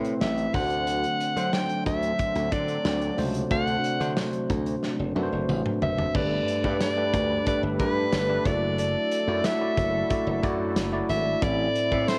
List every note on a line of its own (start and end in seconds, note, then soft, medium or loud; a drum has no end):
0.00 0.13 A2 medium
0.00 0.52 C3 medium
0.00 0.54 A3 medium
0.00 6.11 A3 medium
0.00 0.52 C4 medium
0.00 0.56 C4 medium
0.00 0.56 E4 medium
0.00 0.55 B4 medium
0.00 0.56 B5 medium
0.05 closed hi-hat medium
0.21 0.46 A1 medium
0.21 0.56 E5 medium
0.21 snare loud
0.38 closed hi-hat soft
0.54 1.04 D2 medium
0.54 1.49 D3 medium
0.54 6.11 F#3 medium
0.54 1.20 A3 medium
0.54 6.11 C4 medium
0.54 1.20 D4 medium
0.54 6.11 D4 medium
0.54 1.20 F#4 medium
0.54 1.21 C5 medium
0.54 1.55 F#5 medium
0.54 kick loud
0.54 open hi-hat medium
0.70 closed hi-hat medium
0.87 closed hi-hat medium
1.04 closed hi-hat soft
1.20 closed hi-hat medium
1.36 1.49 D3 medium
1.36 2.28 F#3 medium
1.36 2.28 A3 medium
1.36 2.28 D4 medium
1.36 2.28 C5 medium
1.36 closed hi-hat medium
1.53 1.86 G5 medium
1.53 snare loud
1.53 tambourine medium
1.69 closed hi-hat medium
1.86 2.11 D2 medium
1.86 2.54 E5 medium
1.86 kick medium
1.86 closed hi-hat medium
2.03 closed hi-hat medium
2.19 kick medium
2.19 closed hi-hat medium
2.35 2.48 D2 medium
2.35 closed hi-hat medium
2.52 2.77 D3 medium
2.52 3.18 D5 medium
2.52 kick medium
2.52 closed hi-hat medium
2.68 closed hi-hat medium
2.85 3.10 D2 medium
2.85 snare loud
2.85 tambourine medium
3.02 closed hi-hat medium
3.17 3.43 C#2 medium
3.17 4.13 C3 medium
3.17 3.41 A3 medium
3.17 3.41 D4 medium
3.17 3.41 F#4 medium
3.17 3.41 C5 medium
3.17 open hi-hat medium
3.34 closed hi-hat medium
3.50 3.76 D2 loud
3.50 3.85 A3 medium
3.50 3.85 D4 medium
3.50 3.85 F#4 medium
3.50 3.86 C5 medium
3.50 4.13 F#5 loud
3.50 kick loud
3.50 closed hi-hat medium
3.67 closed hi-hat soft
3.84 closed hi-hat medium
4.00 4.13 D3 medium
4.00 4.80 A3 medium
4.00 4.80 D4 medium
4.00 4.80 F#4 medium
4.00 4.81 C5 medium
4.00 closed hi-hat soft
4.17 snare loud
4.17 tambourine medium
4.33 closed hi-hat medium
4.50 4.75 D2 medium
4.50 kick medium
4.50 closed hi-hat medium
4.66 closed hi-hat medium
4.83 snare medium
4.99 5.12 F#1 medium
5.15 5.28 F#2 medium
5.15 5.84 A3 medium
5.15 5.84 D4 medium
5.15 5.85 F#4 medium
5.15 5.23 B4 medium
5.15 high tom medium
5.23 5.88 C5 medium
5.32 5.45 F#1 medium
5.49 5.61 A1 medium
5.49 mid tom medium
5.49 tambourine medium
5.66 mid tom medium
5.82 6.06 F#1 medium
5.82 6.17 E5 loud
5.82 floor tom medium
5.98 floor tom medium
6.15 6.39 G1 medium
6.15 7.10 G2 medium
6.15 8.43 G3 medium
6.15 6.49 A3 medium
6.15 11.38 D4 medium
6.15 6.49 D4 medium
6.15 6.49 G4 medium
6.15 8.43 A4 medium
6.15 8.43 B4 medium
6.15 6.50 B4 medium
6.15 6.81 D5 loud
6.15 kick loud
6.15 crash medium
6.48 closed hi-hat medium
6.64 6.77 G2 loud
6.64 6.87 A3 medium
6.64 6.87 D4 medium
6.64 6.87 G4 medium
6.64 6.87 B4 medium
6.64 kick medium
6.81 7.43 D5 loud
6.81 snare loud
6.81 closed hi-hat medium
6.81 tambourine medium
6.97 7.31 A3 medium
6.97 7.31 D4 medium
6.97 7.32 G4 medium
6.97 7.32 B4 medium
7.14 7.38 D2 medium
7.14 kick medium
7.14 closed hi-hat medium
7.46 7.69 A3 medium
7.46 7.69 D4 medium
7.46 7.70 G4 medium
7.46 7.70 B4 medium
7.46 7.62 D5 medium
7.46 kick medium
7.46 closed hi-hat medium
7.63 7.81 G1 medium
7.79 8.04 G2 loud
7.79 8.14 A3 medium
7.79 8.14 D4 medium
7.79 8.14 G4 medium
7.79 8.14 B4 medium
7.79 8.48 B4 medium
7.79 kick medium
7.79 closed hi-hat medium
8.12 8.37 G1 medium
8.12 snare loud
8.12 closed hi-hat medium
8.12 tambourine medium
8.29 8.44 A3 medium
8.29 8.46 D4 medium
8.29 8.46 G4 medium
8.29 8.46 B4 medium
8.45 8.95 F#1 loud
8.45 11.39 F#3 medium
8.45 9.11 A3 medium
8.45 12.19 E4 medium
8.45 9.12 E4 medium
8.45 9.12 F#4 medium
8.45 11.39 A4 medium
8.45 8.79 D5 medium
8.45 9.12 D5 medium
8.45 kick loud
8.45 closed hi-hat medium
8.78 9.47 D5 medium
8.78 closed hi-hat medium
9.12 closed hi-hat medium
9.28 9.40 F#2 loud
9.28 9.51 A3 medium
9.28 9.51 E4 medium
9.28 9.51 F#4 medium
9.28 9.51 D5 medium
9.44 10.44 E5 medium
9.44 snare loud
9.44 closed hi-hat loud
9.44 tambourine medium
9.60 9.95 A3 medium
9.60 9.95 E4 medium
9.60 9.95 F#4 medium
9.60 9.96 D5 medium
9.77 10.02 F#1 loud
9.77 kick medium
9.77 closed hi-hat medium
10.10 10.33 A3 medium
10.10 10.33 E4 medium
10.10 10.33 F#4 medium
10.10 10.34 D5 medium
10.10 kick medium
10.10 closed hi-hat medium
10.27 10.39 F#1 loud
10.43 10.78 F#2 medium
10.43 10.77 A3 medium
10.43 10.78 E4 medium
10.43 10.78 F#4 medium
10.43 10.78 D5 loud
10.43 kick loud
10.43 closed hi-hat medium
10.76 11.01 F#1 medium
10.76 snare loud
10.76 closed hi-hat medium
10.76 tambourine medium
10.92 11.27 A3 medium
10.92 11.27 E4 medium
10.92 11.27 F#4 medium
10.92 11.27 D5 medium
11.09 11.34 G#1 medium
11.09 11.44 E5 loud
11.09 closed hi-hat medium
11.42 11.67 A1 loud
11.42 12.19 A2 medium
11.42 12.19 A3 medium
11.42 11.76 C4 medium
11.42 12.19 C4 medium
11.42 11.77 E4 medium
11.42 11.77 A4 medium
11.42 12.10 D5 loud
11.42 11.77 E5 medium
11.42 kick loud
11.42 closed hi-hat medium
11.75 closed hi-hat medium
11.91 12.04 A2 medium
11.91 12.14 C4 medium
11.91 12.14 E4 medium
11.91 12.15 A4 medium
11.91 12.15 E5 medium
11.91 kick medium
12.08 12.19 C5 loud
12.08 snare loud
12.08 closed hi-hat loud
12.08 tambourine medium